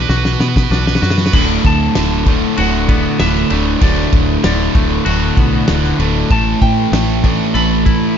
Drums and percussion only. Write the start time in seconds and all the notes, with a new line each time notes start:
0.10 snare
0.25 snare
0.40 snare
0.56 kick, snare
0.72 snare
0.87 snare
0.95 snare
1.03 snare
1.10 snare
1.18 snare
1.26 snare
1.33 kick, crash
1.64 kick, crash
1.95 snare, crash
2.26 kick, crash
2.57 crash
2.89 kick, crash
3.20 snare, crash
3.35 snare
3.50 crash
3.81 kick, crash
4.13 kick, crash
4.44 snare, crash
4.75 kick, crash
5.06 crash
5.37 kick, crash
5.68 snare, crash
5.84 snare
6.00 crash
6.30 kick, crash
6.62 kick, crash
6.93 snare, crash
7.24 kick, crash
7.55 crash
7.86 kick, crash